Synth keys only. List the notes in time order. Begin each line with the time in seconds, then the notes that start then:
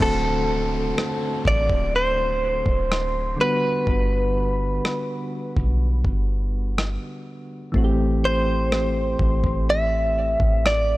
Already playing: A4 C5
0.00 D3 A3 C4 F#4
3.36 D3 G3 B3
3.42 F#4
7.72 E3 A3 C4
7.78 F#4
7.84 G4